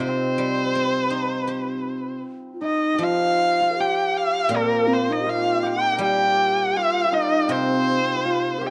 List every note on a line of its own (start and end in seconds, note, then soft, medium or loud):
0.00 2.21 C3 medium
0.00 2.61 D#4 soft
0.00 2.47 F4 medium
0.00 2.17 G4 medium
0.00 2.20 C5 medium
0.07 4.07 C4 medium
0.38 1.85 G3 soft
0.75 2.23 C4 soft
1.10 2.61 D#4 soft
1.47 3.00 G4 soft
2.53 2.62 F4 soft
2.61 3.01 D#4 medium
2.61 5.10 D#4 medium
2.61 3.04 D#5 medium
2.94 3.80 G4 medium
2.98 5.25 F3 medium
2.98 3.72 F4 medium
2.98 3.60 F4 medium
3.03 3.82 F5 medium
3.61 5.26 F4 medium
3.71 3.78 A#4 medium
3.77 4.54 G4 medium
3.77 5.23 G4 medium
3.77 4.18 G5 medium
4.17 4.58 F5 medium
4.49 6.72 A#2 medium
4.49 7.47 C4 medium
4.49 4.89 A#4 medium
4.56 8.70 A#3 medium
4.56 4.95 A#4 medium
4.87 5.11 C4 medium
4.93 5.14 C5 medium
5.10 5.22 D#4 medium
5.10 7.12 D#4 medium
5.10 5.31 D#5 medium
5.21 5.28 G4 medium
5.21 5.62 G4 medium
5.26 6.76 F4 medium
5.26 5.77 F4 medium
5.26 5.68 F5 medium
5.63 6.00 G4 medium
5.67 6.02 G5 loud
5.77 5.82 C6 soft
5.82 5.87 A#5 soft
5.90 8.70 A#4 medium
5.90 5.94 F5 soft
5.95 8.24 G3 medium
5.95 6.01 A#4 soft
5.95 5.97 D#5 soft
6.01 8.15 G4 medium
6.01 6.71 G4 medium
6.01 6.78 G5 medium
6.71 6.79 G4 medium
6.76 7.04 F4 medium
6.76 7.17 F4 medium
6.76 7.15 F5 medium
7.04 8.25 F4 medium
7.12 8.70 D#4 medium
7.12 7.45 D#4 medium
7.12 7.53 D#5 medium
7.45 8.70 C3 medium
7.45 8.70 C4 medium
7.45 7.55 D#4 soft
7.52 7.99 C4 medium
7.52 8.68 C5 medium
8.15 8.61 G4 medium
8.25 8.70 F4 medium
8.25 8.60 F4 medium
8.58 8.70 G4 medium
8.58 8.67 A#4 soft
8.66 8.70 G4 medium
8.66 8.70 G5 medium